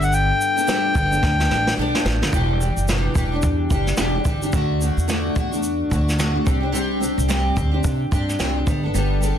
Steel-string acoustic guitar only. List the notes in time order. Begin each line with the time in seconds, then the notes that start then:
Already playing: G3 B3 D4 A4
0.56 B3 D4 A4
0.67 G3 B3 D4 A4
0.94 G3 B3 D4 A4
1.11 B3 D4 A4
1.38 B3 D4 A4
1.50 G3 B3 D4 A4
1.78 G3 B3 D4 A4
1.95 B3 D4 A4
2.22 B3 D4 A4
2.33 E2 B2 E3 G3 D4 G4
2.61 E3 G3 D4 G4
2.88 E2 B2 E3 G3 D4 G4
3.16 E3 G3 D4 G4
3.32 E3 G3 D4 G4
3.70 E3 G3 D4 G4
3.98 E2 B2 E3 G3 D4 G4
4.15 E3 G3 D4 G4
4.25 E3 G3 D4 G4
4.42 E3 G3 D4 G4
4.53 D3 A3 D4 F#4
4.81 D3 A3 D4 F#4
5.08 D3 A3 D4 F#4
5.36 D3 A3 D4 F#4
5.51 A3 D4 F#4
5.90 D3 A3 D4 F#4
6.18 D3 A3 D4 F#4
6.33 A3 D4 F#4
6.45 G3 C4 D4 G4
6.61 C4 D4 G4
6.72 C3 G3 C4 D4 G4
7.00 G3 C4 D4 G4
7.28 C3 G3 C4 D4 G4
7.55 G3 C4 D4 G4
7.71 C4 D4 G4
8.11 G3 C4 D4 G4
8.39 C3 G3 C4 D4 G4
8.55 C4 D4 G4
8.67 G3 B3 D4 A4
8.83 B3 D4 A4
8.94 G3 B3 D4 A4
9.21 G3 B3 D4 A4